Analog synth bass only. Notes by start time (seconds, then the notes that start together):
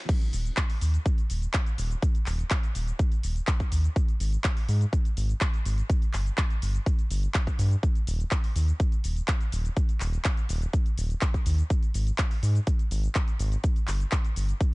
0.33 D#1
0.82 D#2
1.30 D#1
1.78 D#1
2.27 D#1
2.75 D#1
3.23 D#1
3.72 D#2
4.20 G#1
4.69 G#2
5.17 G#1
5.65 G#1
6.14 G1
6.62 G1
7.11 G1
7.59 G2
8.07 D#1
8.56 D#2
9.04 D#1
9.52 D#1
10.01 D#1
10.49 D#1
10.98 D#1
11.46 D#2
11.94 G#1
12.43 G#2
12.91 G#1
13.40 G#1
13.88 G1
14.36 G1